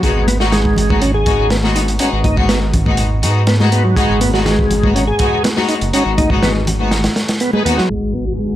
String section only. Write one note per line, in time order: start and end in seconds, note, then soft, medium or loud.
0.03 0.18 G#3 medium
0.03 0.18 B3 medium
0.03 0.18 D#4 medium
0.03 0.18 F#4 loud
0.40 0.55 G#3 medium
0.40 0.55 B3 medium
0.40 0.55 D#4 medium
0.40 0.55 F#4 medium
0.89 1.04 G#3 medium
0.89 1.04 B3 medium
0.89 1.04 D#4 medium
0.89 1.04 F#4 medium
1.26 1.41 G#3 medium
1.26 1.41 B3 medium
1.26 1.41 D#4 medium
1.26 1.41 F#4 medium
1.63 1.78 G#3 medium
1.63 1.78 B3 medium
1.63 1.78 D#4 medium
1.63 1.78 F#4 loud
1.99 2.15 G#3 medium
1.99 2.15 B3 medium
1.99 2.15 D#4 medium
1.99 2.15 F#4 loud
2.37 2.51 G#3 medium
2.37 2.51 B3 medium
2.37 2.51 D#4 medium
2.37 2.51 F#4 loud
2.86 3.00 G#3 medium
2.86 3.00 B3 medium
2.86 3.00 D#4 medium
2.86 3.00 F#4 medium
3.23 3.38 G#3 medium
3.23 3.38 B3 medium
3.23 3.38 D#4 medium
3.23 3.38 F#4 medium
3.60 3.74 G#3 loud
3.60 3.74 B3 medium
3.60 3.74 D#4 medium
3.60 3.74 F#4 loud
3.97 4.12 G#3 medium
3.97 4.11 B3 medium
3.97 4.11 D#4 medium
3.97 4.11 F#4 loud
4.34 4.48 G#3 medium
4.34 4.48 B3 medium
4.34 4.48 D#4 medium
4.34 4.48 F#4 loud
4.83 4.97 G#3 medium
4.83 4.97 B3 medium
4.83 4.97 D#4 medium
4.83 4.97 F#4 medium
5.19 5.34 G#3 medium
5.19 5.34 B3 medium
5.19 5.34 D#4 medium
5.19 5.34 F#4 medium
5.57 5.71 G#3 loud
5.57 5.71 B3 medium
5.57 5.71 D#4 medium
5.57 5.71 F#4 loud
5.93 6.08 G#3 medium
5.93 6.08 B3 medium
5.93 6.08 D#4 medium
5.93 6.08 F#4 loud
6.31 6.45 G#3 medium
6.31 6.45 B3 medium
6.31 6.45 D#4 medium
6.31 6.45 F#4 medium
6.80 6.94 G#3 medium
6.80 6.94 B3 medium
6.80 6.94 D#4 medium
6.80 6.94 F#4 medium
7.53 7.64 G#3 medium
7.53 7.64 B3 medium
7.53 7.64 D#4 medium
7.53 7.64 B4 medium
7.65 7.80 G#3 loud
7.65 7.80 B3 medium
7.65 7.80 D#4 medium
7.65 7.80 F#4 loud
7.90 8.56 G#3 medium
7.90 8.56 B3 medium
7.90 8.56 D#4 medium
7.90 8.56 F#4 medium